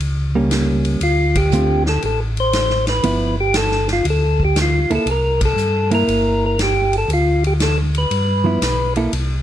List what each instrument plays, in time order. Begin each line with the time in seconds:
0.00 tonewheel organ C#2, ride
0.35 hollow-body jazz guitar G3 A#3 C#4
0.51 snare, hi-hat pedal, ride
0.85 ride
1.01 tonewheel organ D2 F4, ride
1.35 tonewheel organ G4, kick, ride
1.52 hollow-body jazz guitar D3 A3 C4 F4, hi-hat pedal
1.86 tonewheel organ A4, snare
2.02 tonewheel organ A1 A4, ride
2.37 tonewheel organ C5, ride
2.53 snare, hi-hat pedal, ride
2.70 snare
2.87 tonewheel organ B4, snare, ride
3.03 tonewheel organ G1, hollow-body jazz guitar F3 B3 E4, ride
3.40 tonewheel organ G4
3.54 tonewheel organ A4, snare, hi-hat pedal, ride
3.71 snare
3.88 snare, ride
3.93 tonewheel organ F4
4.05 tonewheel organ D2, ride
4.10 tonewheel organ A4
4.40 kick
4.45 tonewheel organ G4
4.56 snare, hi-hat pedal, ride
4.62 tonewheel organ F4
4.90 tonewheel organ D2, hollow-body jazz guitar A#3 E4 A4, ride
4.95 tonewheel organ A4
5.06 tonewheel organ C2, ride
5.11 tonewheel organ A#4
5.41 kick, ride
5.45 tonewheel organ A4
5.56 tonewheel organ G2, hi-hat pedal
5.91 hollow-body jazz guitar A#3 E4, tonewheel organ A#4, ride
6.07 tonewheel organ G1, ride
6.46 tonewheel organ A#4
6.59 tonewheel organ G4, snare, hi-hat pedal, ride
6.93 ride
6.98 tonewheel organ A4
7.08 tonewheel organ D2, ride
7.13 tonewheel organ F4
7.44 tonewheel organ G4, ride
7.60 tonewheel organ A4, snare, hi-hat pedal, ride
7.95 tonewheel organ B4, ride
8.11 tonewheel organ G2, ride
8.44 hollow-body jazz guitar F3 B3 E4
8.62 tonewheel organ B1, snare, hi-hat pedal, ride
8.96 hollow-body jazz guitar A#3 E4 A4, ride
9.13 tonewheel organ C2, ride